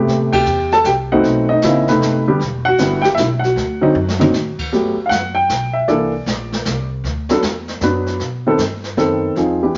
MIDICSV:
0, 0, Header, 1, 5, 480
1, 0, Start_track
1, 0, Tempo, 386847
1, 98, Time_signature, 3, 2, 24, 8
1, 12129, End_track
2, 0, Start_track
2, 0, Title_t, "Grand piano"
2, 0, Program_c, 0, 0
2, 0, Note_on_c, 0, 48, 63
2, 0, Note_on_c, 0, 57, 61
2, 0, Note_on_c, 0, 59, 59
2, 0, Note_on_c, 0, 67, 66
2, 404, Note_on_c, 0, 79, 93
2, 409, Note_off_c, 0, 67, 0
2, 428, Note_on_c, 0, 67, 74
2, 548, Note_off_c, 0, 59, 0
2, 549, Note_off_c, 0, 48, 0
2, 550, Note_off_c, 0, 57, 0
2, 853, Note_off_c, 0, 79, 0
2, 866, Note_off_c, 0, 67, 0
2, 903, Note_on_c, 0, 81, 88
2, 911, Note_on_c, 0, 69, 66
2, 1052, Note_off_c, 0, 81, 0
2, 1057, Note_off_c, 0, 69, 0
2, 1062, Note_on_c, 0, 79, 88
2, 1079, Note_on_c, 0, 67, 74
2, 1132, Note_off_c, 0, 79, 0
2, 1147, Note_off_c, 0, 67, 0
2, 1389, Note_on_c, 0, 78, 80
2, 1390, Note_on_c, 0, 60, 76
2, 1391, Note_on_c, 0, 57, 64
2, 1392, Note_on_c, 0, 63, 84
2, 1395, Note_on_c, 0, 59, 61
2, 1406, Note_on_c, 0, 66, 60
2, 1826, Note_off_c, 0, 78, 0
2, 1836, Note_off_c, 0, 66, 0
2, 1849, Note_off_c, 0, 63, 0
2, 1849, Note_on_c, 0, 75, 87
2, 1868, Note_on_c, 0, 63, 65
2, 1994, Note_off_c, 0, 57, 0
2, 1994, Note_off_c, 0, 60, 0
2, 1996, Note_off_c, 0, 59, 0
2, 2038, Note_on_c, 0, 58, 58
2, 2038, Note_on_c, 0, 64, 75
2, 2040, Note_on_c, 0, 49, 64
2, 2043, Note_on_c, 0, 60, 55
2, 2306, Note_off_c, 0, 63, 0
2, 2309, Note_off_c, 0, 58, 0
2, 2309, Note_off_c, 0, 64, 0
2, 2310, Note_off_c, 0, 49, 0
2, 2311, Note_off_c, 0, 60, 0
2, 2341, Note_on_c, 0, 71, 72
2, 2344, Note_off_c, 0, 75, 0
2, 2351, Note_on_c, 0, 48, 58
2, 2353, Note_on_c, 0, 57, 62
2, 2355, Note_on_c, 0, 59, 51
2, 2357, Note_on_c, 0, 63, 67
2, 2758, Note_off_c, 0, 48, 0
2, 2759, Note_off_c, 0, 57, 0
2, 2760, Note_off_c, 0, 59, 0
2, 2761, Note_off_c, 0, 63, 0
2, 2782, Note_off_c, 0, 71, 0
2, 2825, Note_on_c, 0, 59, 60
2, 2827, Note_on_c, 0, 50, 74
2, 2832, Note_on_c, 0, 67, 71
2, 2833, Note_on_c, 0, 55, 65
2, 2968, Note_off_c, 0, 59, 0
2, 2969, Note_off_c, 0, 50, 0
2, 2972, Note_off_c, 0, 55, 0
2, 2972, Note_off_c, 0, 67, 0
2, 3289, Note_on_c, 0, 78, 105
2, 3329, Note_on_c, 0, 66, 78
2, 3466, Note_on_c, 0, 50, 58
2, 3466, Note_on_c, 0, 55, 48
2, 3471, Note_on_c, 0, 59, 54
2, 3476, Note_on_c, 0, 64, 55
2, 3735, Note_off_c, 0, 78, 0
2, 3742, Note_on_c, 0, 79, 91
2, 3743, Note_off_c, 0, 50, 0
2, 3743, Note_off_c, 0, 55, 0
2, 3745, Note_off_c, 0, 59, 0
2, 3748, Note_off_c, 0, 64, 0
2, 3757, Note_off_c, 0, 66, 0
2, 3785, Note_on_c, 0, 67, 80
2, 3804, Note_off_c, 0, 79, 0
2, 3847, Note_off_c, 0, 67, 0
2, 3904, Note_on_c, 0, 76, 96
2, 3966, Note_on_c, 0, 64, 75
2, 3978, Note_off_c, 0, 76, 0
2, 4033, Note_off_c, 0, 64, 0
2, 4212, Note_on_c, 0, 78, 80
2, 4272, Note_on_c, 0, 66, 61
2, 4732, Note_on_c, 0, 54, 64
2, 4735, Note_on_c, 0, 50, 68
2, 4738, Note_on_c, 0, 60, 68
2, 4750, Note_on_c, 0, 63, 82
2, 4882, Note_off_c, 0, 54, 0
2, 4883, Note_off_c, 0, 50, 0
2, 4884, Note_off_c, 0, 60, 0
2, 4890, Note_off_c, 0, 63, 0
2, 5205, Note_on_c, 0, 50, 59
2, 5205, Note_on_c, 0, 60, 61
2, 5206, Note_on_c, 0, 54, 57
2, 5211, Note_on_c, 0, 63, 73
2, 5358, Note_off_c, 0, 50, 0
2, 5358, Note_off_c, 0, 60, 0
2, 5359, Note_off_c, 0, 54, 0
2, 5361, Note_off_c, 0, 63, 0
2, 5621, Note_off_c, 0, 78, 0
2, 5651, Note_off_c, 0, 66, 0
2, 5863, Note_on_c, 0, 67, 59
2, 5866, Note_on_c, 0, 59, 46
2, 5869, Note_on_c, 0, 57, 45
2, 5872, Note_on_c, 0, 54, 52
2, 6142, Note_off_c, 0, 67, 0
2, 6143, Note_off_c, 0, 59, 0
2, 6144, Note_off_c, 0, 57, 0
2, 6146, Note_off_c, 0, 54, 0
2, 6276, Note_on_c, 0, 77, 65
2, 6321, Note_on_c, 0, 78, 94
2, 6328, Note_off_c, 0, 77, 0
2, 6634, Note_on_c, 0, 79, 89
2, 6652, Note_off_c, 0, 78, 0
2, 7116, Note_on_c, 0, 76, 69
2, 7137, Note_off_c, 0, 79, 0
2, 7296, Note_off_c, 0, 76, 0
2, 7297, Note_on_c, 0, 74, 67
2, 7303, Note_on_c, 0, 69, 64
2, 7304, Note_on_c, 0, 58, 52
2, 7309, Note_on_c, 0, 62, 55
2, 7313, Note_on_c, 0, 52, 58
2, 7582, Note_off_c, 0, 58, 0
2, 7582, Note_off_c, 0, 69, 0
2, 7585, Note_off_c, 0, 62, 0
2, 7587, Note_off_c, 0, 52, 0
2, 8521, Note_off_c, 0, 74, 0
2, 9062, Note_on_c, 0, 59, 57
2, 9063, Note_on_c, 0, 54, 61
2, 9069, Note_on_c, 0, 62, 55
2, 9069, Note_on_c, 0, 69, 63
2, 9207, Note_off_c, 0, 59, 0
2, 9208, Note_off_c, 0, 54, 0
2, 9211, Note_off_c, 0, 62, 0
2, 9211, Note_off_c, 0, 69, 0
2, 9717, Note_on_c, 0, 54, 58
2, 9719, Note_on_c, 0, 71, 68
2, 9721, Note_on_c, 0, 59, 60
2, 9722, Note_on_c, 0, 62, 58
2, 10188, Note_off_c, 0, 54, 0
2, 10189, Note_off_c, 0, 71, 0
2, 10190, Note_off_c, 0, 59, 0
2, 10190, Note_off_c, 0, 62, 0
2, 10505, Note_on_c, 0, 51, 66
2, 10508, Note_on_c, 0, 60, 62
2, 10512, Note_on_c, 0, 59, 60
2, 10517, Note_on_c, 0, 69, 72
2, 10649, Note_off_c, 0, 51, 0
2, 10650, Note_off_c, 0, 60, 0
2, 10653, Note_off_c, 0, 59, 0
2, 10655, Note_off_c, 0, 69, 0
2, 11132, Note_on_c, 0, 59, 54
2, 11138, Note_on_c, 0, 60, 57
2, 11140, Note_on_c, 0, 51, 63
2, 11142, Note_on_c, 0, 69, 68
2, 11615, Note_off_c, 0, 59, 0
2, 11615, Note_off_c, 0, 60, 0
2, 11619, Note_off_c, 0, 51, 0
2, 11620, Note_off_c, 0, 69, 0
2, 11623, Note_on_c, 0, 53, 55
2, 11634, Note_on_c, 0, 60, 48
2, 11634, Note_on_c, 0, 63, 48
2, 11638, Note_on_c, 0, 68, 54
2, 11902, Note_off_c, 0, 53, 0
2, 11907, Note_off_c, 0, 60, 0
2, 11907, Note_off_c, 0, 63, 0
2, 11909, Note_off_c, 0, 68, 0
2, 11942, Note_on_c, 0, 62, 45
2, 11945, Note_on_c, 0, 52, 49
2, 11948, Note_on_c, 0, 59, 45
2, 11950, Note_on_c, 0, 67, 59
2, 12129, Note_off_c, 0, 52, 0
2, 12129, Note_off_c, 0, 59, 0
2, 12129, Note_off_c, 0, 62, 0
2, 12129, Note_off_c, 0, 67, 0
2, 12129, End_track
3, 0, Start_track
3, 0, Title_t, "Upright bass"
3, 0, Program_c, 1, 32
3, 90, Note_on_c, 1, 45, 72
3, 559, Note_off_c, 1, 45, 0
3, 573, Note_on_c, 1, 40, 83
3, 1037, Note_off_c, 1, 40, 0
3, 1045, Note_on_c, 1, 36, 90
3, 1516, Note_off_c, 1, 36, 0
3, 1530, Note_on_c, 1, 35, 77
3, 1999, Note_off_c, 1, 35, 0
3, 2014, Note_on_c, 1, 33, 85
3, 2481, Note_off_c, 1, 33, 0
3, 2492, Note_on_c, 1, 30, 78
3, 2960, Note_off_c, 1, 30, 0
3, 2971, Note_on_c, 1, 28, 77
3, 3439, Note_off_c, 1, 28, 0
3, 3449, Note_on_c, 1, 31, 81
3, 3919, Note_off_c, 1, 31, 0
3, 3936, Note_on_c, 1, 35, 83
3, 4402, Note_off_c, 1, 35, 0
3, 4415, Note_on_c, 1, 38, 80
3, 4881, Note_off_c, 1, 38, 0
3, 4901, Note_on_c, 1, 42, 95
3, 5357, Note_off_c, 1, 42, 0
3, 5364, Note_on_c, 1, 45, 76
3, 5661, Note_off_c, 1, 45, 0
3, 5857, Note_on_c, 1, 43, 70
3, 6148, Note_off_c, 1, 43, 0
3, 6335, Note_on_c, 1, 42, 81
3, 6802, Note_off_c, 1, 42, 0
3, 6815, Note_on_c, 1, 35, 72
3, 7283, Note_off_c, 1, 35, 0
3, 7294, Note_on_c, 1, 36, 67
3, 7762, Note_off_c, 1, 36, 0
3, 7770, Note_on_c, 1, 34, 91
3, 8240, Note_off_c, 1, 34, 0
3, 8255, Note_on_c, 1, 36, 85
3, 8723, Note_off_c, 1, 36, 0
3, 8731, Note_on_c, 1, 38, 78
3, 9201, Note_off_c, 1, 38, 0
3, 9214, Note_on_c, 1, 40, 84
3, 9682, Note_off_c, 1, 40, 0
3, 9689, Note_on_c, 1, 42, 79
3, 10159, Note_off_c, 1, 42, 0
3, 10167, Note_on_c, 1, 47, 69
3, 10638, Note_off_c, 1, 47, 0
3, 10645, Note_on_c, 1, 43, 88
3, 11117, Note_off_c, 1, 43, 0
3, 11131, Note_on_c, 1, 42, 78
3, 11600, Note_off_c, 1, 42, 0
3, 11607, Note_on_c, 1, 40, 70
3, 12078, Note_off_c, 1, 40, 0
3, 12129, End_track
4, 0, Start_track
4, 0, Title_t, "Muted upright bass strokes"
4, 5687, Note_on_c, 9, 29, 37
4, 5811, Note_off_c, 9, 29, 0
4, 6156, Note_on_c, 9, 29, 34
4, 6280, Note_off_c, 9, 29, 0
4, 12129, End_track
5, 0, Start_track
5, 0, Title_t, "Drums"
5, 93, Note_on_c, 9, 36, 23
5, 100, Note_on_c, 9, 25, 43
5, 100, Note_on_c, 9, 38, 39
5, 218, Note_off_c, 9, 36, 0
5, 224, Note_off_c, 9, 38, 0
5, 406, Note_on_c, 9, 36, 76
5, 408, Note_on_c, 9, 49, 83
5, 530, Note_off_c, 9, 36, 0
5, 532, Note_off_c, 9, 49, 0
5, 571, Note_on_c, 9, 44, 52
5, 695, Note_off_c, 9, 44, 0
5, 891, Note_on_c, 9, 38, 41
5, 1015, Note_off_c, 9, 38, 0
5, 1048, Note_on_c, 9, 44, 51
5, 1054, Note_on_c, 9, 36, 21
5, 1055, Note_on_c, 9, 38, 64
5, 1172, Note_off_c, 9, 44, 0
5, 1178, Note_off_c, 9, 36, 0
5, 1179, Note_off_c, 9, 38, 0
5, 1534, Note_off_c, 9, 25, 0
5, 1534, Note_on_c, 9, 25, 38
5, 1534, Note_on_c, 9, 38, 38
5, 1535, Note_on_c, 9, 36, 22
5, 1658, Note_off_c, 9, 38, 0
5, 1659, Note_off_c, 9, 36, 0
5, 2008, Note_on_c, 9, 44, 55
5, 2015, Note_on_c, 9, 38, 63
5, 2016, Note_on_c, 9, 36, 24
5, 2133, Note_off_c, 9, 44, 0
5, 2139, Note_off_c, 9, 38, 0
5, 2140, Note_off_c, 9, 36, 0
5, 2328, Note_on_c, 9, 38, 42
5, 2452, Note_off_c, 9, 38, 0
5, 2498, Note_on_c, 9, 36, 18
5, 2502, Note_on_c, 9, 38, 43
5, 2622, Note_off_c, 9, 36, 0
5, 2626, Note_off_c, 9, 38, 0
5, 2977, Note_on_c, 9, 36, 25
5, 2981, Note_off_c, 9, 25, 0
5, 2981, Note_on_c, 9, 25, 49
5, 2981, Note_on_c, 9, 38, 43
5, 3102, Note_off_c, 9, 36, 0
5, 3105, Note_off_c, 9, 38, 0
5, 3452, Note_on_c, 9, 44, 61
5, 3458, Note_on_c, 9, 36, 18
5, 3458, Note_on_c, 9, 38, 64
5, 3576, Note_off_c, 9, 44, 0
5, 3582, Note_off_c, 9, 36, 0
5, 3582, Note_off_c, 9, 38, 0
5, 3769, Note_on_c, 9, 38, 43
5, 3893, Note_off_c, 9, 38, 0
5, 3935, Note_on_c, 9, 44, 53
5, 3939, Note_on_c, 9, 36, 21
5, 3941, Note_on_c, 9, 38, 61
5, 4059, Note_off_c, 9, 44, 0
5, 4063, Note_off_c, 9, 36, 0
5, 4065, Note_off_c, 9, 38, 0
5, 4262, Note_on_c, 9, 38, 33
5, 4386, Note_off_c, 9, 38, 0
5, 4421, Note_on_c, 9, 36, 21
5, 4427, Note_off_c, 9, 25, 0
5, 4427, Note_on_c, 9, 25, 42
5, 4427, Note_on_c, 9, 38, 41
5, 4545, Note_off_c, 9, 36, 0
5, 4551, Note_off_c, 9, 38, 0
5, 5068, Note_on_c, 9, 38, 54
5, 5193, Note_off_c, 9, 38, 0
5, 5221, Note_on_c, 9, 47, 89
5, 5345, Note_off_c, 9, 47, 0
5, 5378, Note_on_c, 9, 44, 51
5, 5385, Note_on_c, 9, 38, 53
5, 5502, Note_off_c, 9, 44, 0
5, 5509, Note_off_c, 9, 38, 0
5, 5693, Note_on_c, 9, 36, 59
5, 5694, Note_on_c, 9, 49, 72
5, 5817, Note_off_c, 9, 36, 0
5, 5818, Note_off_c, 9, 49, 0
5, 5867, Note_off_c, 9, 25, 0
5, 5867, Note_on_c, 9, 25, 42
5, 5867, Note_on_c, 9, 38, 36
5, 5991, Note_off_c, 9, 38, 0
5, 6338, Note_on_c, 9, 44, 46
5, 6340, Note_on_c, 9, 36, 22
5, 6344, Note_on_c, 9, 38, 54
5, 6462, Note_off_c, 9, 44, 0
5, 6464, Note_off_c, 9, 36, 0
5, 6468, Note_off_c, 9, 38, 0
5, 6817, Note_on_c, 9, 44, 55
5, 6820, Note_on_c, 9, 36, 19
5, 6823, Note_on_c, 9, 38, 57
5, 6941, Note_off_c, 9, 44, 0
5, 6944, Note_off_c, 9, 36, 0
5, 6947, Note_off_c, 9, 38, 0
5, 7297, Note_off_c, 9, 25, 0
5, 7297, Note_on_c, 9, 25, 40
5, 7297, Note_on_c, 9, 38, 34
5, 7298, Note_on_c, 9, 36, 17
5, 7421, Note_off_c, 9, 38, 0
5, 7422, Note_off_c, 9, 36, 0
5, 7776, Note_on_c, 9, 44, 47
5, 7778, Note_on_c, 9, 36, 17
5, 7783, Note_on_c, 9, 38, 54
5, 7901, Note_off_c, 9, 44, 0
5, 7902, Note_off_c, 9, 36, 0
5, 7907, Note_off_c, 9, 38, 0
5, 8094, Note_on_c, 9, 38, 37
5, 8218, Note_off_c, 9, 38, 0
5, 8253, Note_on_c, 9, 44, 55
5, 8258, Note_on_c, 9, 36, 19
5, 8259, Note_on_c, 9, 38, 57
5, 8377, Note_off_c, 9, 44, 0
5, 8382, Note_off_c, 9, 36, 0
5, 8383, Note_off_c, 9, 38, 0
5, 8737, Note_on_c, 9, 36, 20
5, 8742, Note_off_c, 9, 25, 0
5, 8742, Note_on_c, 9, 25, 42
5, 8742, Note_on_c, 9, 38, 34
5, 8861, Note_off_c, 9, 36, 0
5, 8866, Note_off_c, 9, 38, 0
5, 9047, Note_on_c, 9, 38, 61
5, 9171, Note_off_c, 9, 38, 0
5, 9208, Note_on_c, 9, 44, 63
5, 9214, Note_on_c, 9, 38, 58
5, 9215, Note_on_c, 9, 36, 18
5, 9332, Note_off_c, 9, 44, 0
5, 9338, Note_off_c, 9, 38, 0
5, 9339, Note_off_c, 9, 36, 0
5, 9528, Note_on_c, 9, 38, 38
5, 9652, Note_off_c, 9, 38, 0
5, 9686, Note_on_c, 9, 44, 46
5, 9693, Note_on_c, 9, 38, 53
5, 9694, Note_on_c, 9, 36, 20
5, 9810, Note_off_c, 9, 44, 0
5, 9817, Note_off_c, 9, 38, 0
5, 9818, Note_off_c, 9, 36, 0
5, 10004, Note_on_c, 9, 38, 35
5, 10128, Note_off_c, 9, 38, 0
5, 10170, Note_off_c, 9, 25, 0
5, 10170, Note_on_c, 9, 25, 43
5, 10170, Note_on_c, 9, 38, 38
5, 10173, Note_on_c, 9, 36, 22
5, 10294, Note_off_c, 9, 38, 0
5, 10297, Note_off_c, 9, 36, 0
5, 10649, Note_on_c, 9, 44, 52
5, 10653, Note_on_c, 9, 36, 22
5, 10655, Note_on_c, 9, 38, 57
5, 10773, Note_off_c, 9, 44, 0
5, 10777, Note_off_c, 9, 36, 0
5, 10779, Note_off_c, 9, 38, 0
5, 10965, Note_on_c, 9, 38, 38
5, 11089, Note_off_c, 9, 38, 0
5, 11134, Note_on_c, 9, 36, 23
5, 11134, Note_on_c, 9, 38, 35
5, 11258, Note_off_c, 9, 36, 0
5, 11258, Note_off_c, 9, 38, 0
5, 11614, Note_on_c, 9, 36, 18
5, 11615, Note_off_c, 9, 25, 0
5, 11615, Note_on_c, 9, 25, 35
5, 11615, Note_on_c, 9, 38, 34
5, 11738, Note_off_c, 9, 36, 0
5, 11739, Note_off_c, 9, 38, 0
5, 12129, Note_off_c, 9, 25, 0
5, 12129, End_track
0, 0, End_of_file